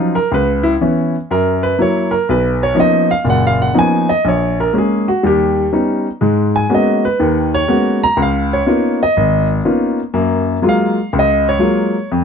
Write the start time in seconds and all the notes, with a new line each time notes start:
Already playing: F3 F#3 C#4 D#4 F4
0.15 A#4
0.32 C#2 B4
0.63 E4
0.81 E3 B3 C#4
1.31 F#2 A#4
1.63 B4
1.79 F#3 A#3 E4 C#5
2.11 A#4
2.29 B1 B4
2.63 C#5
2.75 F3 A#3 B3 C#4 D#4
2.80 D#5
3.11 F5
3.24 F#1 A#2
3.30 F#5
3.47 F5
3.62 F#5
3.74 F3 A#3 B3 C#4 D#4
3.79 G#5
4.09 D#5
4.25 A#1 C#5
4.60 A#4
4.73 G#3 A#3 C#4
4.78 G#4
5.08 F#4
5.23 D#2 G3 G4
5.73 G3 B3 C#4 D#4
6.21 G#2 G#3
6.56 G#5
6.69 G#3 A#3 B3 C#4 F#4
6.75 D#5
7.05 B4
7.20 D#2 D#3
7.54 C#5
7.68 G#3 A#3 B3 C#4 F#4
8.04 A#5
8.17 C#2
8.22 F5
8.53 C#5
8.66 A#3 B3 C#4 D#4 F4
9.03 D#5
9.17 G#1
9.65 A#3 B3 C#4 D#4 F4
10.14 F#2 A#3
10.62 F#3 G#3 A#3 F4
10.69 F5
11.13 C#2
11.19 D#5
11.49 C#5
11.59 F#3 G#3 A#3 F4
12.12 F2